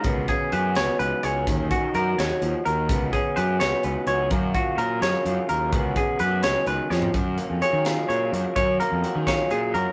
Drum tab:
HH |x-x-x-x-x-x-|x-x-x-x-x-x-|x-x-x-x-x-x-|x-x-x-x-x-x-|
SD |------o-----|------o-----|------o-----|------o-----|
FT |------------|------------|------------|------------|
BD |o-o---------|o-o---------|o-o---------|o-o---------|

HH |x-x-x-x-x---|x-x-x-x-x-x-|x-x-x-x-x-x-|
SD |------o---o-|------o-----|------o-----|
FT |-----------o|------------|------------|
BD |o-o---------|o-----------|o-----o-----|